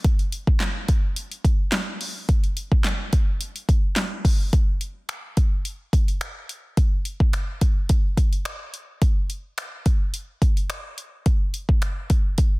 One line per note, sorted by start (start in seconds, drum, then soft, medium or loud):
0.04 kick loud
0.04 closed hi-hat medium
0.19 closed hi-hat soft
0.32 closed hi-hat medium
0.47 kick loud
0.60 snare medium
0.60 clap loud
0.60 closed hi-hat medium
0.88 kick loud
0.88 closed hi-hat medium
1.16 closed hi-hat medium
1.32 closed hi-hat medium
1.45 kick medium
1.45 closed hi-hat medium
1.72 snare loud
1.72 clap loud
1.72 closed hi-hat medium
2.01 open hi-hat medium
2.29 kick loud
2.29 closed hi-hat medium
2.44 closed hi-hat soft
2.57 closed hi-hat medium
2.72 kick loud
2.84 snare medium
2.84 clap loud
2.84 closed hi-hat medium
3.13 kick loud
3.13 closed hi-hat medium
3.41 closed hi-hat loud
3.56 closed hi-hat medium
3.69 kick medium
3.69 closed hi-hat medium
3.96 snare loud
3.96 clap loud
3.96 closed hi-hat medium
4.25 kick medium
4.25 open hi-hat medium
4.53 kick loud
4.53 closed hi-hat medium
4.81 closed hi-hat medium
5.09 finger snap loud
5.09 closed hi-hat medium
5.37 kick medium
5.37 closed hi-hat medium
5.65 closed hi-hat medium
5.93 kick medium
5.93 closed hi-hat medium
6.08 closed hi-hat medium
6.21 finger snap loud
6.21 closed hi-hat medium
6.49 closed hi-hat medium
6.77 kick loud
6.77 closed hi-hat medium
7.05 closed hi-hat medium
7.20 kick medium
7.33 finger snap medium
7.33 closed hi-hat medium
7.61 kick medium
7.61 closed hi-hat medium
7.89 kick medium
7.89 closed hi-hat medium
8.17 kick medium
8.17 closed hi-hat medium
8.33 closed hi-hat medium
8.45 finger snap loud
8.45 closed hi-hat medium
8.74 closed hi-hat medium
9.02 kick loud
9.02 closed hi-hat medium
9.30 closed hi-hat medium
9.58 finger snap loud
9.58 closed hi-hat medium
9.86 kick medium
9.86 closed hi-hat medium
10.14 closed hi-hat medium
10.42 kick medium
10.42 closed hi-hat medium
10.57 closed hi-hat medium
10.70 finger snap loud
10.70 closed hi-hat medium
10.98 closed hi-hat medium
11.26 kick loud
11.26 closed hi-hat medium
11.54 closed hi-hat medium
11.69 kick medium
11.82 finger snap loud
11.82 closed hi-hat medium
12.10 kick medium
12.10 closed hi-hat medium
12.38 kick medium
12.38 closed hi-hat medium